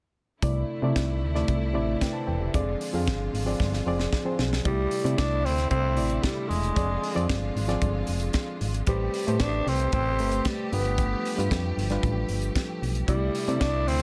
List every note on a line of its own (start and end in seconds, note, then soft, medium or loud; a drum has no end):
0.42 0.64 C2 loud
0.42 0.75 C3 medium
0.42 4.61 D3 medium
0.42 2.51 A3 medium
0.42 0.75 A3 medium
0.42 2.51 E4 medium
0.42 0.75 E4 medium
0.42 0.75 D5 medium
0.42 kick loud
0.42 closed hi-hat medium
0.82 0.93 C3 loud
0.82 1.25 C3 medium
0.82 1.25 A3 medium
0.82 0.89 D#4 medium
0.82 1.26 D5 medium
0.90 1.29 E4 medium
0.96 1.24 C2 medium
0.96 kick loud
0.96 snare loud
0.96 closed hi-hat medium
1.23 1.44 D2 medium
1.34 1.67 C3 medium
1.34 1.67 A3 medium
1.34 1.67 E4 medium
1.34 1.67 D5 medium
1.34 snare soft
1.48 1.76 C2 loud
1.48 kick loud
1.48 closed hi-hat soft
1.73 1.96 A1 medium
1.73 2.06 C3 medium
1.73 2.06 A3 medium
1.73 2.07 E4 medium
1.73 2.01 D5 medium
2.01 2.14 B4 soft
2.01 2.14 G5 medium
2.01 kick medium
2.01 snare medium
2.01 closed hi-hat medium
2.13 2.27 C5 medium
2.13 2.26 A5 medium
2.27 2.49 E1 medium
2.27 2.40 B4 medium
2.27 2.40 G5 medium
2.40 2.66 G4 medium
2.40 2.66 E5 medium
2.54 2.76 F1 medium
2.54 2.86 F3 medium
2.54 4.64 G#3 medium
2.54 2.86 C4 medium
2.54 4.64 F4 medium
2.54 2.87 G#4 medium
2.54 2.87 D5 medium
2.54 kick loud
2.54 closed hi-hat medium
2.81 open hi-hat medium
2.93 3.09 F2 loud
2.93 3.36 F3 medium
2.93 3.37 C4 medium
2.93 3.37 G#4 medium
2.93 3.37 F5 medium
3.08 3.29 G1 medium
3.08 kick loud
3.08 snare loud
3.08 closed hi-hat medium
3.33 3.55 G#1 medium
3.33 open hi-hat medium
3.46 3.78 F3 medium
3.46 3.78 C4 medium
3.46 3.79 G#4 medium
3.46 3.79 D5 medium
3.60 3.82 G1 loud
3.60 kick loud
3.60 snare soft
3.73 snare soft
3.86 4.08 F1 medium
3.86 4.18 F3 medium
3.86 4.18 C4 medium
3.86 4.19 G#4 medium
3.86 4.19 D5 loud
4.00 snare medium
4.13 kick loud
4.13 snare medium
4.25 4.57 F3 medium
4.25 4.58 C4 medium
4.25 4.58 G#4 medium
4.25 4.58 C5 medium
4.39 4.60 B1 medium
4.39 snare medium
4.53 snare medium
4.63 4.87 C2 loud
4.63 4.96 C3 medium
4.63 8.84 D3 medium
4.63 5.20 G3 loud
4.63 4.97 A3 medium
4.63 6.75 A3 medium
4.63 4.97 E4 medium
4.63 6.75 E4 medium
4.63 4.97 D5 medium
4.63 kick loud
4.63 closed hi-hat medium
4.91 open hi-hat medium
5.03 5.79 C3 medium
5.03 5.16 C3 loud
5.03 5.79 A3 medium
5.03 5.79 E4 medium
5.03 5.80 D5 medium
5.03 closed hi-hat medium
5.18 5.47 C2 loud
5.18 5.46 D4 loud
5.18 kick loud
5.18 snare loud
5.18 closed hi-hat medium
5.45 5.67 D2 medium
5.45 5.70 C4 medium
5.45 open hi-hat medium
5.58 snare soft
5.58 closed hi-hat soft
5.71 6.00 C2 loud
5.71 6.25 C4 loud
5.71 kick medium
5.71 closed hi-hat soft
5.96 6.19 A1 medium
5.96 6.61 C3 medium
5.96 6.61 A3 medium
5.96 6.61 E4 medium
5.96 6.62 D5 medium
5.96 open hi-hat medium
6.10 closed hi-hat soft
6.23 6.50 G3 medium
6.23 kick medium
6.23 snare loud
6.23 closed hi-hat medium
6.49 6.72 E1 medium
6.49 7.28 G#3 medium
6.49 open hi-hat medium
6.63 closed hi-hat medium
6.75 6.98 F1 loud
6.75 7.08 F3 medium
6.75 8.85 G#3 medium
6.75 7.08 C4 medium
6.75 8.85 F4 medium
6.75 7.09 G#4 medium
6.75 7.09 D5 medium
6.75 kick loud
6.75 closed hi-hat medium
7.04 open hi-hat medium
7.15 7.27 F2 medium
7.15 7.58 F3 medium
7.15 7.58 C4 medium
7.15 7.58 G#4 medium
7.15 7.59 D5 loud
7.15 closed hi-hat medium
7.29 7.51 G1 loud
7.29 kick loud
7.29 snare loud
7.29 closed hi-hat medium
7.56 7.77 G#1 loud
7.56 open hi-hat medium
7.68 8.54 F3 medium
7.68 8.54 C4 medium
7.68 8.54 G#4 medium
7.68 8.54 D5 medium
7.68 snare soft
7.68 closed hi-hat soft
7.82 8.04 G1 loud
7.82 kick loud
7.82 closed hi-hat medium
8.07 8.30 F1 medium
8.07 open hi-hat medium
8.20 closed hi-hat medium
8.33 kick loud
8.33 snare loud
8.33 closed hi-hat medium
8.61 8.82 G#1 medium
8.61 open hi-hat medium
8.74 closed hi-hat medium
8.86 9.09 A1 medium
8.86 10.70 C3 medium
8.86 9.43 G3 medium
8.86 9.19 A3 medium
8.86 13.04 A3 medium
8.86 9.19 G4 medium
8.86 13.04 G4 medium
8.86 9.19 B4 medium
8.86 9.20 C5 medium
8.86 kick loud
8.86 closed hi-hat medium
9.14 open hi-hat medium
9.27 9.38 A2 medium
9.27 10.01 A3 medium
9.27 10.02 G4 medium
9.27 10.02 B4 medium
9.27 10.02 C5 medium
9.27 closed hi-hat medium
9.40 9.62 A1 medium
9.40 9.70 D4 loud
9.40 kick loud
9.40 snare loud
9.40 closed hi-hat medium
9.67 9.88 C2 medium
9.67 9.93 C4 medium
9.67 open hi-hat medium
9.80 closed hi-hat soft
9.92 10.21 A1 loud
9.92 10.49 C4 loud
9.92 kick loud
9.92 closed hi-hat medium
10.19 10.41 G1 medium
10.19 10.72 A3 medium
10.19 10.72 G4 medium
10.19 10.72 B4 medium
10.19 10.72 C5 medium
10.19 open hi-hat medium
10.32 closed hi-hat soft
10.45 10.72 G3 medium
10.45 kick loud
10.45 snare loud
10.45 closed hi-hat medium
10.71 11.15 G1 loud
10.71 13.06 F3 medium
10.71 11.25 G3 medium
10.71 11.47 B3 medium
10.71 11.25 D4 medium
10.71 11.26 F4 medium
10.71 10.79 A#4 medium
10.71 open hi-hat medium
10.80 11.29 B4 medium
10.85 closed hi-hat medium
10.98 kick loud
10.98 closed hi-hat medium
11.25 open hi-hat medium
11.37 11.49 G2 loud
11.37 11.80 G3 medium
11.37 11.80 D4 medium
11.37 11.80 F4 medium
11.37 11.81 B4 medium
11.37 closed hi-hat soft
11.51 11.72 F2 medium
11.51 kick loud
11.51 snare loud
11.51 closed hi-hat medium
11.77 11.98 G1 loud
11.77 open hi-hat medium
11.90 12.75 G3 medium
11.90 12.75 D4 medium
11.90 12.76 F4 medium
11.90 12.76 B4 medium
11.90 snare soft
11.90 closed hi-hat soft
12.03 12.25 A1 loud
12.03 kick loud
12.03 closed hi-hat medium
12.29 12.51 G1 medium
12.29 open hi-hat medium
12.42 closed hi-hat soft
12.56 kick loud
12.56 snare medium
12.56 closed hi-hat medium
12.82 13.04 B1 medium
12.82 open hi-hat medium
12.95 closed hi-hat soft
13.07 13.30 C2 loud
13.07 13.40 C3 medium
13.07 14.02 D3 medium
13.07 13.63 G3 medium
13.07 14.02 A3 medium
13.07 13.40 A3 medium
13.07 14.02 E4 medium
13.07 13.40 E4 medium
13.07 13.41 D5 medium
13.07 kick loud
13.07 closed hi-hat medium
13.35 open hi-hat medium
13.47 14.02 C3 medium
13.47 13.59 C3 loud
13.47 14.02 A3 medium
13.47 14.02 E4 medium
13.47 14.02 D5 medium
13.47 closed hi-hat soft
13.61 13.89 C2 medium
13.61 13.89 D4 loud
13.61 kick loud
13.61 snare loud
13.61 closed hi-hat medium
13.87 14.02 D2 medium
13.87 14.02 C4 loud
13.87 open hi-hat medium